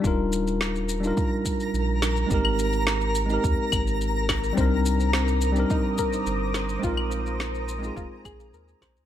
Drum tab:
SH |x-xxxxxxx-xxx-xx|x-xxxxxxx-xxx-xx|x-xxxxxxx-xxx-xx|x-xxxxxxx-xxxxxx|
CL |----------------|-x--------x---x-|----------------|-x--------x---x-|
SD |----o---------o-|----o---------o-|----o---------o-|----o---------o-|
BD |o-------o-o-----|o-------o-o---o-|o-------o-o-----|o-------o-o---o-|